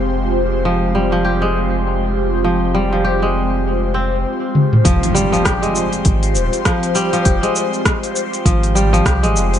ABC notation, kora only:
X:1
M:4/4
L:1/16
Q:"Swing 16ths" 1/4=100
K:Fm
V:1 name="Kora" clef=bass
z4 F,2 G, F, G A,4 z3 | F,2 G, F, G A,4 z C z4 z | F,2 G, F, G A,4 z3 F,2 G, F, | G A,4 z3 F,2 G, F, G A,3 |]